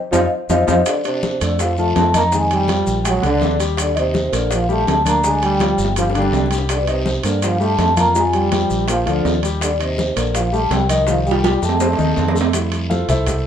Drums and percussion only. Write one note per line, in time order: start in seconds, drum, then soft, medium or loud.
0.13 high bongo loud
0.13 high conga medium
0.13 high timbale loud
0.13 maracas medium
0.49 high bongo medium
0.49 high conga medium
0.49 high timbale medium
0.49 maracas medium
0.68 high bongo loud
0.68 high conga loud
0.68 high timbale medium
0.68 maracas medium
0.86 high bongo medium
0.86 high timbale medium
0.86 long guiro medium
0.86 maracas medium
1.04 high bongo soft
1.04 high conga soft
1.04 high timbale medium
1.04 maracas soft
1.23 high bongo medium
1.23 high conga medium
1.23 low timbale medium
1.23 short guiro medium
1.23 maracas soft
1.41 high bongo soft
1.41 high conga soft
1.41 high timbale medium
1.41 short guiro medium
1.41 maracas medium
1.59 high bongo medium
1.59 high conga soft
1.59 high timbale medium
1.59 long guiro medium
1.59 maracas medium
1.77 high bongo soft
1.77 high conga soft
1.77 maracas soft
1.96 high bongo soft
1.96 low bongo medium
1.96 high conga medium
1.96 high timbale medium
1.96 low timbale medium
1.96 short guiro medium
1.96 maracas soft
2.14 high conga medium
2.14 high timbale medium
2.14 short guiro medium
2.14 maracas medium
2.32 high bongo medium
2.32 long guiro medium
2.32 maracas medium
2.50 high bongo soft
2.50 high conga soft
2.50 high timbale medium
2.50 maracas soft
2.68 high bongo medium
2.68 high conga medium
2.68 high timbale medium
2.68 low timbale medium
2.68 short guiro medium
2.68 maracas soft
2.87 high bongo soft
2.87 high conga soft
2.87 short guiro medium
2.87 maracas medium
3.05 high bongo medium
3.05 high conga soft
3.05 high timbale loud
3.05 long guiro medium
3.05 maracas medium
3.23 high bongo soft
3.23 high conga soft
3.23 high timbale medium
3.23 maracas soft
3.41 high bongo soft
3.41 low bongo medium
3.41 high conga medium
3.41 low timbale medium
3.41 short guiro medium
3.41 maracas soft
3.60 high timbale medium
3.60 short guiro medium
3.60 maracas medium
3.77 high bongo medium
3.77 high conga soft
3.77 high timbale loud
3.77 long guiro medium
3.77 maracas medium
3.96 high bongo soft
3.96 high conga soft
3.96 high timbale medium
3.96 maracas soft
4.14 high bongo medium
4.14 high conga medium
4.14 low timbale medium
4.14 short guiro medium
4.14 maracas soft
4.33 high bongo soft
4.33 high conga soft
4.33 high timbale medium
4.33 short guiro medium
4.33 maracas medium
4.51 high bongo medium
4.51 high conga soft
4.51 high timbale medium
4.51 long guiro medium
4.51 maracas medium
4.69 high bongo soft
4.69 high conga soft
4.69 maracas soft
4.87 high bongo soft
4.87 low bongo medium
4.87 high conga medium
4.87 high timbale medium
4.87 low timbale medium
4.87 short guiro medium
4.87 maracas soft
5.06 high conga medium
5.06 high timbale medium
5.06 short guiro medium
5.06 maracas medium
5.23 high bongo medium
5.23 high conga soft
5.23 long guiro medium
5.23 maracas medium
5.42 high bongo soft
5.42 high conga soft
5.42 high timbale medium
5.42 maracas soft
5.60 high bongo medium
5.60 high conga medium
5.60 high timbale medium
5.60 low timbale medium
5.60 short guiro medium
5.60 maracas soft
5.78 high conga soft
5.78 short guiro medium
5.78 maracas medium
5.85 high bongo medium
5.96 low bongo medium
5.96 high conga soft
5.96 high timbale medium
5.96 long guiro medium
5.96 maracas medium
6.10 low bongo loud
6.15 high conga soft
6.15 high timbale medium
6.15 maracas soft
6.22 low bongo medium
6.33 high conga medium
6.33 low timbale medium
6.33 short guiro medium
6.33 maracas soft
6.46 low bongo medium
6.51 high timbale medium
6.51 short guiro medium
6.51 maracas medium
6.58 low bongo medium
6.69 high bongo medium
6.69 high conga soft
6.69 high timbale loud
6.69 long guiro medium
6.69 maracas medium
6.87 high bongo soft
6.87 high conga soft
6.87 high timbale medium
6.87 maracas soft
7.05 high bongo medium
7.05 high conga loud
7.05 low timbale medium
7.05 short guiro medium
7.05 maracas soft
7.23 high bongo soft
7.23 high conga soft
7.23 high timbale medium
7.23 short guiro medium
7.23 maracas medium
7.42 high bongo medium
7.42 high conga soft
7.42 high timbale medium
7.42 long guiro medium
7.42 maracas medium
7.61 high bongo soft
7.61 high conga soft
7.61 maracas soft
7.79 high bongo soft
7.79 low bongo medium
7.79 high conga medium
7.79 high timbale medium
7.79 low timbale medium
7.79 short guiro medium
7.79 maracas soft
7.97 high conga medium
7.97 high timbale medium
7.97 short guiro medium
7.97 maracas medium
8.15 high bongo medium
8.15 high conga soft
8.15 long guiro medium
8.15 maracas medium
8.33 high bongo soft
8.33 high conga soft
8.33 high timbale medium
8.33 maracas soft
8.52 high bongo medium
8.52 high conga loud
8.52 high timbale medium
8.52 low timbale medium
8.52 short guiro medium
8.52 maracas soft
8.70 high bongo soft
8.70 high conga soft
8.70 short guiro medium
8.70 maracas medium
8.88 high bongo medium
8.88 high conga soft
8.88 high timbale medium
8.88 long guiro medium
8.88 maracas medium
9.07 high bongo soft
9.07 high conga soft
9.07 high timbale medium
9.07 maracas soft
9.25 high bongo soft
9.25 low bongo medium
9.25 high conga medium
9.25 low timbale medium
9.25 short guiro medium
9.25 maracas soft
9.43 high timbale medium
9.43 short guiro medium
9.43 maracas medium
9.61 high bongo medium
9.61 high conga soft
9.61 high timbale medium
9.61 long guiro medium
9.61 maracas medium
9.79 high bongo soft
9.79 high conga soft
9.79 high timbale medium
9.79 maracas soft
9.98 high bongo medium
9.98 high conga medium
9.98 low timbale medium
9.98 short guiro medium
9.98 maracas soft
10.17 high bongo soft
10.17 high conga soft
10.17 high timbale medium
10.17 short guiro medium
10.17 maracas medium
10.35 high bongo medium
10.35 high conga soft
10.35 high timbale medium
10.35 long guiro medium
10.35 maracas medium
10.52 high bongo soft
10.52 high conga soft
10.52 maracas soft
10.71 high bongo soft
10.71 low bongo medium
10.71 high conga medium
10.71 high timbale medium
10.71 low timbale medium
10.71 short guiro medium
10.71 maracas soft
10.89 high conga medium
10.89 high timbale medium
10.89 short guiro medium
10.89 maracas medium
11.07 high bongo medium
11.07 high conga soft
11.07 high timbale medium
11.07 long guiro medium
11.07 maracas medium
11.26 high bongo soft
11.26 high conga soft
11.26 maracas soft
11.31 high timbale loud
11.44 high bongo medium
11.44 high conga medium
11.44 high timbale loud
11.44 short guiro medium
11.44 maracas soft
11.62 high bongo medium
11.62 high conga soft
11.62 short guiro medium
11.62 maracas medium
11.69 low timbale medium
11.80 high bongo medium
11.80 high conga soft
11.80 low timbale loud
11.80 long guiro medium
11.80 maracas medium
11.93 low timbale medium
11.98 high conga soft
11.98 maracas soft
12.05 low timbale medium
12.17 low bongo medium
12.17 high conga medium
12.17 low timbale medium
12.17 short guiro medium
12.17 maracas soft
12.28 low timbale loud
12.35 low bongo medium
12.35 short guiro medium
12.35 maracas medium
12.41 low timbale loud
12.53 high bongo medium
12.53 high conga soft
12.53 high timbale medium
12.53 long guiro medium
12.53 maracas medium
12.72 high bongo soft
12.72 high conga soft
12.72 high timbale medium
12.72 maracas soft
12.90 high bongo medium
12.90 high conga loud
12.90 low timbale medium
12.90 short guiro medium
12.90 maracas soft
13.09 high bongo soft
13.09 high conga soft
13.09 low conga medium
13.09 high timbale medium
13.09 short guiro medium
13.09 maracas medium
13.26 high bongo medium
13.26 high conga soft
13.26 low conga medium
13.26 high timbale medium
13.26 long guiro medium
13.26 maracas medium